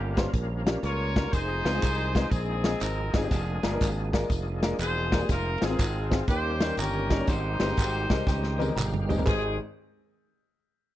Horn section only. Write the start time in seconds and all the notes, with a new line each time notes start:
Already playing: A#3 C#4 G4
0.84 F4 A#4 C#5
1.33 D#4 G#4 C5
2.31 C4 D#4 G#4
2.81 A#4
3.15 D4 G#4
4.80 G#4 C5
5.30 F4 A#4
5.63 C4 F4 G#4
6.28 G4 C5
6.78 C#4 G4 A#4
7.29 D#4 G4 C5
9.26 G#4